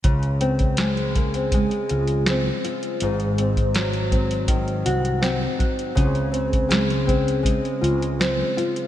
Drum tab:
HH |xxxxxxxxxxxxx-xx|xxxxxxxxxxxxx-xx|xxxxxxxxxxxxx-xx|
SD |----o-------o---|----o-------o---|----o-------o---|
BD |o--o--o-o-------|---o--o-o-----o-|o--o--o-o-------|